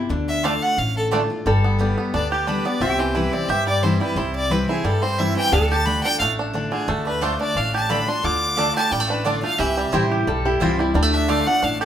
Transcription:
Already playing: E4
0.09 D2 D3 D4
0.28 E5
0.43 D3 A3 D4 F4 D5 F5 A5
0.62 F#5
0.77 A1 A2 F5
0.97 A4
1.11 D3 A3 D4 F4 D5 A5
1.30 D4 F4
1.46 G1 G2 G3 A4
1.64 B3
1.79 D3 G3 B3 G4
1.97 B3 G4
2.14 D2 D3 D4 D5
2.31 G4
2.46 D3 G3 B3 D4 G4 B4
2.65 B3 G4 D5
2.81 C2 C3 C4 G4 E5
2.99 E3 C5
3.15 E3 G3 C4 E4 B4
3.33 C4 E4 D5
3.49 G2 G4 E5
3.67 G3 D5
3.83 E3 G3 C4 E4 C5
4.00 G3 C4 E4 B4
4.16 C2 C3 E4 C5
4.35 D5
4.50 E3 G3 C4 E4 B4
4.68 C4 E4 G#4
4.84 G2 G3 A4
5.02 C4 C5
5.18 E3 G3 C4 E4 E5
5.36 E3 C4 E4 G5
5.52 D2 D3 D4 A4 F5
5.69 G4 A5
5.86 D3 A3 D4 F4 B5
6.03 D4 F4 G5
6.19 A1 A2 A3 F5
6.39 D4
6.53 D3 A3 D4 F4
6.72 D3 D4 F4 G#4
6.88 D2 D3 A3 A4
7.06 D4 B4
7.21 D3 A3 D4 F4 C5 D5 A5
7.41 D4 D5
7.55 A1 A2 D4 F5
7.74 G4 A5
7.89 D3 A3 D4 F4 D5 A5 B5
8.07 D4 F4 C6
8.23 D2 D3 F4 D6
8.56 D3 A3 D4 F4 D5 A5
8.75 G4 A5
8.91 A1 A2 G3 G5
9.00 A3
9.09 D4 B4
9.24 D3 A3 D4 F4 D5 A5
9.42 A3 D4 F4 F5
9.58 C2 C3 E3 G4 E5
9.77 G3
9.92 A1 E3 G3 C4 E4 G4 C5 G5
10.11 G4
10.27 B1 G2 G3 A4
10.45 E4 G4
10.60 C2 E3 G3 C4 E4 F4 C5 G5
10.78 G3 C4 E4
10.94 D2 D3 G3 D4
11.02 A3
11.13 D4 E5
11.28 D3 A3 D4 F4 D5 F5 A5
11.46 D4 F4 F#5
11.63 A1 A2 D4 F5
11.81 G4 A4

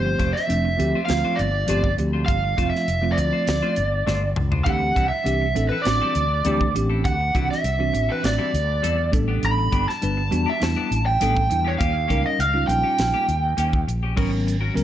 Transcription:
Already playing: G1 F3 A3 C4 G4 C5
0.05 muted clean electric guitar stroke
0.19 F1 A3 D4 F4 C5, kick, closed hi-hat
0.33 E5, muted clean electric guitar stroke, snare
0.48 F1 F3 A3 C4 D4, closed hi-hat
0.65 muted clean electric guitar stroke
0.77 D2 F3 A3 C4 G4, muted clean electric guitar stroke, closed hi-hat
0.95 D4 F4 C5
1.05 D2 F3 A3 C4 F4 F5, muted clean electric guitar stroke, closed hi-hat
1.10 snare
1.25 A3 D4 F4 C5, muted fretless electric bass stroke
1.36 G1 D5, muted clean electric guitar stroke, closed hi-hat
1.66 G1 F3 A3 C4 D4 F4 G4 C5, closed hi-hat
1.84 kick
1.97 D2 F3 A3 C4 G4, muted clean electric guitar stroke, closed hi-hat
2.13 D4 F4 C5
2.26 G1 F5, kick, closed hi-hat
2.44 muted clean electric guitar stroke
2.56 F1 F3 A3 C4 D4 F4 C5, kick, closed hi-hat
2.70 E5
2.74 muted clean electric guitar stroke, snare
2.88 F1, closed hi-hat
3.01 F3 A3 C4 F4, muted clean electric guitar stroke
3.12 D5
3.18 D2, muted clean electric guitar stroke, closed hi-hat
3.33 D4 F4 C5
3.47 D2, muted clean electric guitar stroke, snare, closed hi-hat
3.62 A3 D4 F4 C5, muted fretless electric bass stroke
3.76 G1, muted clean electric guitar stroke, closed hi-hat
4.06 G1 A3 D4 F4 C5, snare
4.23 muted clean electric guitar stroke
4.36 C#2, muted clean electric guitar stroke, mid tom
4.51 D4 F4 C5, floor tom
4.64 D2 E3 G3 C4 D4 E4 G4 A4 F#5, kick, closed hi-hat
4.82 muted clean electric guitar stroke
4.96 C2 G3 C4 E4 A4, kick, closed hi-hat
5.08 E5, muted clean electric guitar stroke
5.24 C2 E3 C4 D4 G4, closed hi-hat
5.42 muted clean electric guitar stroke
5.54 A1 E3 C4 D4 A4, muted clean electric guitar stroke, closed hi-hat
5.69 C4 E4 A4 B4
5.82 E3 C4 D5, closed hi-hat
5.86 A1 D4 F#4, muted clean electric guitar stroke, snare
6.01 G3 C4 E4 A4, muted fretless electric bass stroke
6.15 D2, muted clean electric guitar stroke, closed hi-hat
6.45 D2 E3 G3 C4 D4 E4 G4 A4, closed hi-hat
6.60 muted clean electric guitar stroke, kick
6.74 A1 E3 C4 D4 G4, muted clean electric guitar stroke, closed hi-hat
6.90 C4 E4 A4
7.05 D2 F#5, kick, closed hi-hat
7.20 muted clean electric guitar stroke
7.34 C2 E3 G3 C4 D4 E4 F#4 A4, kick, closed hi-hat
7.50 E5, muted clean electric guitar stroke, snare
7.64 C2, closed hi-hat
7.79 E3 C4 D4 F#4, muted clean electric guitar stroke
7.93 A1, muted clean electric guitar stroke, closed hi-hat
8.09 C4 E4 A4 B4
8.23 A1 D5, muted clean electric guitar stroke, snare, closed hi-hat
8.38 G3 C4 E4 A4, muted fretless electric bass stroke
8.54 D2, closed hi-hat
8.82 E2 G3 C4 E4 A4, closed hi-hat
8.98 muted clean electric guitar stroke
9.12 A1 G3 B3 D4 A4, muted clean electric guitar stroke, kick, closed hi-hat
9.28 B3 D4 G4
9.43 A1 B5, closed hi-hat
9.58 muted clean electric guitar stroke
9.72 G1 E3 B3 D4 G4, kick, closed hi-hat
9.88 A5, muted clean electric guitar stroke, snare
10.02 G1 G3 B3 D4 B4, closed hi-hat
10.17 muted clean electric guitar stroke
10.31 E2 G3 B3 D4 F#4, muted clean electric guitar stroke, closed hi-hat
10.46 B3 D4 G4 E5
10.60 E2 G3 B3 D4 E4 A5, muted clean electric guitar stroke, snare, closed hi-hat
10.76 E3 B3 D4 G4, muted fretless electric bass stroke
10.91 A1, muted clean electric guitar stroke, closed hi-hat
11.06 G5
11.20 A1 E3 G3 B3 D4 G4 A4, closed hi-hat
11.36 muted clean electric guitar stroke, kick
11.50 E2 G3 B3 D4 E4, muted clean electric guitar stroke, closed hi-hat
11.65 B3 D4 G4 C#5
11.78 D#2 A#3 C#4 G4 F5, kick, closed hi-hat
11.94 muted clean electric guitar stroke
12.08 C#2 G3 A#3 C#4 D#4 G4 A#4, kick, closed hi-hat
12.26 D#5
12.39 C#2 F5, closed hi-hat
12.53 G3 C#4 D#4 F4, muted clean electric guitar stroke
12.68 A#1 G5, muted clean electric guitar stroke, closed hi-hat
12.83 C#4 G4
12.97 A#1, muted clean electric guitar stroke, snare, closed hi-hat
13.14 A#3 C#4 G4
13.28 D#2, muted clean electric guitar stroke, closed hi-hat
13.57 D#2 A#3 C#4 G4, closed hi-hat
13.73 muted clean electric guitar stroke, kick
13.87 A#1, muted clean electric guitar stroke, closed hi-hat
14.03 C#4 G4
14.16 G#1 F#3 B3 C#4 F#4 A#4, kick, crash
14.32 muted clean electric guitar stroke
14.47 muted clean electric guitar stroke, closed hi-hat
14.61 C#4 F#4 A#4
14.74 C#2 F#3 B3 C#4 A#4, muted clean electric guitar stroke, closed hi-hat

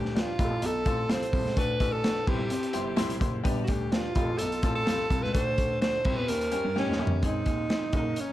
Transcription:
Already playing: D2 G2 G4
0.05 snare
0.15 D4 G4 B4, snare, closed hi-hat
0.20 F4
0.38 F1 C4 F4 G4, kick, closed hi-hat
0.44 A4
0.51 A1
0.62 B1 A4, closed hi-hat
0.86 A1 C4 F4 A4, kick, closed hi-hat
1.09 C2 C4 F4 A4 C5, snare, closed hi-hat
1.22 closed hi-hat
1.33 C2 C4 F4 A4, kick, open hi-hat
1.45 C#2, snare
1.57 D2 D3 D4 F#4 A4 B4, kick, closed hi-hat
1.80 A1 D4 F#4 A4, kick, closed hi-hat
1.92 A4
2.04 D4 F#4 A4, snare, closed hi-hat
2.27 C2 C3 E4 G4 C5, kick, crash
2.39 C2
2.50 C3, closed hi-hat
2.63 closed hi-hat
2.73 G1 E4 G4 C5, closed hi-hat
2.96 C2 E4 G4 C5, snare, closed hi-hat
3.10 closed hi-hat
3.20 F#1 E4 G4 C5, kick, closed hi-hat
3.43 G1 G2 D4 G4 B4, kick, closed hi-hat
3.63 F#4
3.67 D2 D4 G4 B4, kick, closed hi-hat
3.92 D4 F4 G4 B4, snare, closed hi-hat
4.15 F1 C4 F4 G4, kick, closed hi-hat
4.22 A4
4.29 A1
4.38 B1 A4, closed hi-hat
4.52 closed hi-hat
4.62 A1 C4 F4 A4, kick, closed hi-hat
4.75 A4
4.85 C2 C4 F4 A4, snare, closed hi-hat
4.99 snare
5.10 C2 C4 F4 A4, kick, closed hi-hat
5.23 C#2 B4, snare
5.33 D2 D3 D4 F#4 A4 C5, kick, closed hi-hat
5.57 D4 F#4 A4, kick, closed hi-hat
5.81 D4 F#4 A4 C5, snare, closed hi-hat
6.04 C2 C4 E4 G4, kick, crash
6.17 E2 B4
6.28 D#2 D#3 C#4 D#4 G4 A#4, closed hi-hat
6.41 closed hi-hat
6.51 G2 C#4 D#4 G4, closed hi-hat
6.65 G2
6.76 C#4 D#4 G4, snare
6.88 D#2
6.92 snare
6.99 G1 C#4 D#4 G4
7.07 floor tom
7.23 G#1 G#2 C4 D#4 G#4, kick, closed hi-hat
7.46 D#2 C4 D#4 G#4, kick, closed hi-hat
7.69 C4 D#4 G#4, snare, closed hi-hat
7.81 F#1
7.93 F#1 C#4 D#4 F#4 A4, kick, closed hi-hat
7.99 A#4
8.16 closed hi-hat
8.21 C#4
8.28 C#2

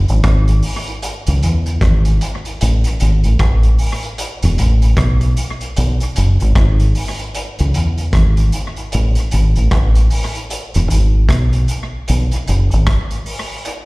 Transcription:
0.08 G#1, closed hi-hat
0.24 G#1, kick, cross-stick, closed hi-hat
0.48 closed hi-hat
0.62 open hi-hat
0.87 closed hi-hat
1.02 closed hi-hat
1.27 C#2, closed hi-hat
1.43 E2, closed hi-hat
1.66 closed hi-hat
1.81 G#1, kick, cross-stick, closed hi-hat
2.05 closed hi-hat
2.21 closed hi-hat
2.45 closed hi-hat
2.61 A1, closed hi-hat
2.84 closed hi-hat
3.00 G#1, closed hi-hat
3.24 A1, closed hi-hat
3.39 A1, kick, cross-stick, closed hi-hat
3.63 closed hi-hat
3.79 open hi-hat
4.02 closed hi-hat
4.18 closed hi-hat
4.42 E1, closed hi-hat
4.58 A1, closed hi-hat
4.82 closed hi-hat
4.97 B1, kick, cross-stick, closed hi-hat
5.21 closed hi-hat
5.37 closed hi-hat
5.61 closed hi-hat
5.76 B1, closed hi-hat
6.00 closed hi-hat
6.16 F#1, closed hi-hat
6.40 G#1, closed hi-hat
6.55 G#1, kick, cross-stick, closed hi-hat
6.80 closed hi-hat
6.95 open hi-hat
7.19 closed hi-hat
7.34 closed hi-hat
7.59 C#2, closed hi-hat
7.74 E2, closed hi-hat
7.98 closed hi-hat
8.13 G#1, kick, cross-stick, closed hi-hat
8.37 closed hi-hat
8.52 closed hi-hat
8.76 closed hi-hat
8.92 A1, closed hi-hat
9.15 closed hi-hat
9.31 G#1, closed hi-hat
9.55 A1, closed hi-hat
9.71 A1, kick, cross-stick, closed hi-hat
9.95 closed hi-hat
10.10 open hi-hat
10.35 closed hi-hat
10.50 closed hi-hat
10.74 E1, closed hi-hat
10.90 G#1, closed hi-hat
11.29 B1, kick, cross-stick, closed hi-hat
11.53 closed hi-hat
11.68 closed hi-hat
12.08 B1, closed hi-hat
12.32 closed hi-hat
12.47 F#1, closed hi-hat
12.71 G#1, closed hi-hat
12.87 kick, cross-stick, closed hi-hat
13.11 closed hi-hat
13.26 open hi-hat
13.65 closed hi-hat

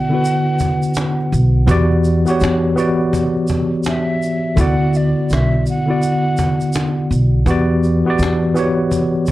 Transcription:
Already playing: D3 B3 E4 F#4 D5 F#5
0.09 D3 B3 E4
0.13 F#4 B4
0.24 cajon slap, shaker
0.46 cajon slap
0.59 cajon bass, shaker
0.83 cajon slap, shaker
0.94 cajon slap, shaker
1.19 cajon slap
1.32 B1, cajon slap, shaker
1.67 E2 E3 B3 F#4 G4, cajon bass, shaker
1.71 D5
1.91 cajon slap
2.04 cajon slap, shaker
2.25 E3 B3 F#4 G4, shaker
2.30 C#5
2.40 E2, cajon slap, shaker
2.63 cajon slap
2.75 E3 B3 F#4 G4, shaker
2.80 D5
3.00 cajon slap
3.13 cajon bass, shaker
3.35 cajon slap
3.47 cajon bass, shaker
3.73 cajon slap
3.83 cajon slap, shaker
3.88 E5
4.09 cajon slap
4.22 cajon slap, shaker
4.43 cajon slap
4.56 D2 D3 B3 E4 F#4, cajon bass, shaker
4.60 D5 F#5
4.80 cajon slap
4.93 D5, cajon slap, shaker
5.18 cajon slap
5.30 B1 E5, cajon slap, shaker
5.52 cajon slap
5.66 F#5, cajon slap, shaker
5.86 D3 B3 E4 F#4
5.90 D5
6.02 cajon slap, shaker
6.25 cajon slap
6.37 cajon bass, shaker
6.61 cajon slap, shaker
6.73 cajon slap, shaker
6.99 cajon slap
7.11 B1, cajon slap, shaker
7.46 E2 E3 B3 F#4 G4, cajon bass, shaker
7.51 D5
7.70 cajon slap
7.83 cajon slap, shaker
8.05 E3 B3 F#4 G4, cajon slap
8.10 D5
8.19 E2, cajon slap, shaker
8.41 cajon slap
8.54 E3 B3 F#4, cajon slap, shaker
8.58 G4 C#5
8.91 cajon bass, shaker
9.14 cajon slap
9.26 cajon bass, shaker

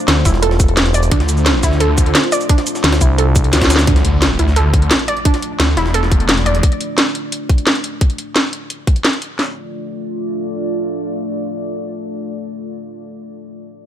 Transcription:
Already playing: A3 D4 F4 C5
0.08 D2, snare, closed hi-hat
0.25 E1 E4, kick, snare, closed hi-hat, shaker
0.34 snare
0.43 A4, closed hi-hat
0.51 snare
0.60 kick, closed hi-hat, shaker
0.68 closed hi-hat
0.77 snare, closed hi-hat
0.86 snare, closed hi-hat
0.94 D5, closed hi-hat, shaker
1.03 closed hi-hat, shaker
1.11 D2 D4, kick, closed hi-hat
1.20 snare, closed hi-hat
1.29 D2, closed hi-hat, shaker
1.37 shaker
1.46 snare, closed hi-hat
1.63 D2 E4, kick, snare, closed hi-hat, shaker
1.72 snare
1.80 A4, closed hi-hat
1.98 kick, closed hi-hat, shaker
2.06 closed hi-hat
2.15 snare, closed hi-hat
2.24 closed hi-hat
2.32 D5, closed hi-hat, shaker
2.41 closed hi-hat, shaker
2.49 D4, kick, closed hi-hat
2.58 snare, closed hi-hat
2.67 closed hi-hat, shaker
2.75 snare, shaker
2.84 D2, snare, closed hi-hat
2.93 snare, closed hi-hat
3.01 C2 E4, kick, closed hi-hat, shaker
3.18 A4, closed hi-hat
3.36 kick, closed hi-hat, shaker
3.44 closed hi-hat
3.53 D2, snare, closed hi-hat, shaker
3.61 kick, snare, closed hi-hat
3.64 snare
3.70 D4, snare, closed hi-hat, shaker
3.76 snare
3.79 snare, closed hi-hat, shaker
3.87 D2 A3 D4 F4 D5, kick, closed hi-hat, impact
3.96 snare, closed hi-hat
4.05 D2, closed hi-hat
4.22 snare, closed hi-hat
4.39 D2 E4, closed hi-hat
4.48 snare
4.56 A4, closed hi-hat
4.74 kick, closed hi-hat
4.82 closed hi-hat
4.91 snare, closed hi-hat
4.99 closed hi-hat
5.08 D5, closed hi-hat
5.17 closed hi-hat
5.25 D4, kick, closed hi-hat
5.34 snare, closed hi-hat
5.42 closed hi-hat
5.60 D2, snare, closed hi-hat
5.77 E1 E4, snare, closed hi-hat
5.86 snare
5.94 A4, closed hi-hat
6.03 snare
6.12 kick, closed hi-hat
6.20 closed hi-hat
6.29 snare, closed hi-hat
6.37 snare, closed hi-hat
6.46 D5, closed hi-hat
6.55 closed hi-hat
6.63 kick, closed hi-hat
6.72 closed hi-hat
6.81 closed hi-hat
6.98 snare, closed hi-hat
7.15 closed hi-hat
7.32 closed hi-hat
7.49 kick, closed hi-hat
7.58 closed hi-hat
7.67 snare, closed hi-hat
7.75 closed hi-hat
7.84 closed hi-hat
8.01 kick, closed hi-hat
8.10 closed hi-hat
8.18 closed hi-hat
8.36 snare, closed hi-hat
8.53 closed hi-hat
8.70 closed hi-hat
8.87 kick, closed hi-hat
8.96 closed hi-hat
9.05 snare, closed hi-hat
9.13 closed hi-hat
9.22 closed hi-hat
9.39 A3 D4 F4 D5, snare

